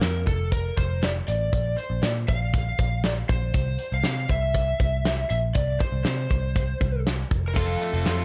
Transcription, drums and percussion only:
0.01 snare, closed hi-hat
0.27 kick, closed hi-hat
0.52 kick, closed hi-hat
0.77 kick, closed hi-hat
1.03 snare, closed hi-hat
1.28 closed hi-hat
1.53 kick, closed hi-hat
1.79 closed hi-hat
2.03 snare, closed hi-hat
2.28 kick, closed hi-hat
2.54 kick, closed hi-hat
2.79 kick, closed hi-hat
3.04 snare, closed hi-hat
3.29 kick, closed hi-hat
3.54 kick, closed hi-hat
3.79 closed hi-hat
4.04 snare, closed hi-hat
4.29 kick, closed hi-hat
4.54 kick, closed hi-hat
4.80 kick, closed hi-hat
5.05 snare, closed hi-hat
5.30 closed hi-hat
5.55 kick, closed hi-hat
5.80 kick, closed hi-hat
6.05 snare, closed hi-hat
6.30 kick, closed hi-hat
6.56 kick, closed hi-hat
6.81 kick, closed hi-hat
7.07 snare, closed hi-hat
7.31 kick, closed hi-hat
7.56 kick, closed hi-hat
7.81 closed hi-hat
8.06 snare, closed hi-hat

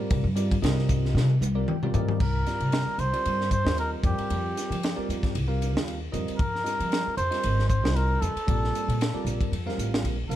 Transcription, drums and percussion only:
0.10 kick, ride
0.36 hi-hat pedal, ride
0.51 kick, ride
0.63 snare, ride
0.79 snare
0.89 kick, hi-hat pedal, ride
1.05 snare
1.17 snare
1.42 hi-hat pedal, high tom
1.68 mid tom
1.83 mid tom
1.94 floor tom, hi-hat pedal
2.09 floor tom
2.20 kick, crash
2.46 snare, hi-hat pedal, ride
2.60 ride
2.72 snare, ride
2.99 hi-hat pedal, ride
3.14 ride
3.25 ride
3.41 snare
3.51 kick, hi-hat pedal, ride
3.67 snare
3.78 ride
4.04 kick, hi-hat pedal, ride
4.18 ride
4.30 ride
4.57 snare, hi-hat pedal, ride
4.72 ride
4.83 snare, ride
5.10 hi-hat pedal, ride
5.23 kick, snare, ride
5.35 ride
5.62 hi-hat pedal, ride
5.77 snare
5.88 ride
6.14 hi-hat pedal, ride
6.28 ride
6.39 kick, ride
6.55 snare
6.66 snare, hi-hat pedal, ride
6.80 ride
6.92 snare, ride
7.17 hi-hat pedal, ride
7.32 snare, ride
7.43 ride
7.59 snare
7.70 kick, hi-hat pedal, ride
7.85 snare
7.96 ride
8.22 hi-hat pedal, ride
8.37 ride
8.48 kick, ride
8.64 snare
8.75 hi-hat pedal, ride
8.89 ride
9.01 snare, ride
9.27 hi-hat pedal, ride
9.41 kick, ride
9.53 ride
9.69 snare
9.79 hi-hat pedal, ride
9.94 snare
10.05 ride
10.31 hi-hat pedal, ride

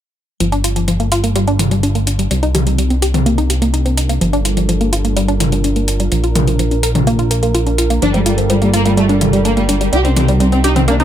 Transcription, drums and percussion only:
0.40 closed hi-hat
0.52 closed hi-hat
0.64 closed hi-hat
0.76 closed hi-hat
0.88 closed hi-hat
1.00 closed hi-hat
1.12 closed hi-hat
1.24 closed hi-hat
1.36 closed hi-hat
1.48 closed hi-hat
1.59 closed hi-hat, mid tom
1.71 closed hi-hat
1.83 closed hi-hat
1.95 closed hi-hat
2.07 closed hi-hat
2.19 closed hi-hat
2.31 closed hi-hat
2.43 closed hi-hat
2.55 closed hi-hat, mid tom
2.67 closed hi-hat
2.78 closed hi-hat
2.90 closed hi-hat
3.02 closed hi-hat
3.14 closed hi-hat, mid tom
3.26 closed hi-hat
3.38 closed hi-hat
3.50 closed hi-hat
3.62 closed hi-hat
3.74 closed hi-hat
3.86 closed hi-hat
3.98 closed hi-hat
4.09 closed hi-hat
4.21 closed hi-hat
4.33 closed hi-hat
4.45 closed hi-hat
4.57 closed hi-hat
4.69 closed hi-hat
4.81 closed hi-hat
4.93 closed hi-hat
5.05 closed hi-hat
5.17 closed hi-hat
5.28 closed hi-hat
5.40 closed hi-hat, mid tom
5.52 closed hi-hat
5.64 closed hi-hat
5.76 closed hi-hat
5.88 closed hi-hat
6.00 closed hi-hat
6.12 closed hi-hat
6.24 closed hi-hat
6.35 closed hi-hat, mid tom
6.47 closed hi-hat
6.59 closed hi-hat
6.71 closed hi-hat
6.83 closed hi-hat
6.95 closed hi-hat, mid tom
7.07 closed hi-hat
7.19 closed hi-hat
7.31 closed hi-hat
7.43 closed hi-hat
7.55 closed hi-hat
7.67 closed hi-hat
7.78 closed hi-hat
7.90 closed hi-hat
8.02 closed hi-hat
8.14 closed hi-hat
8.26 closed hi-hat
8.38 closed hi-hat
8.50 closed hi-hat
8.62 closed hi-hat
8.74 closed hi-hat
8.86 closed hi-hat
8.97 closed hi-hat
9.09 closed hi-hat
9.21 closed hi-hat, mid tom
9.33 closed hi-hat
9.45 closed hi-hat
9.57 closed hi-hat
9.69 closed hi-hat
9.81 closed hi-hat
9.93 closed hi-hat
10.05 closed hi-hat
10.17 closed hi-hat, mid tom
10.28 closed hi-hat
10.40 closed hi-hat
10.52 closed hi-hat
10.64 closed hi-hat
10.76 closed hi-hat, mid tom
10.88 closed hi-hat
11.00 closed hi-hat

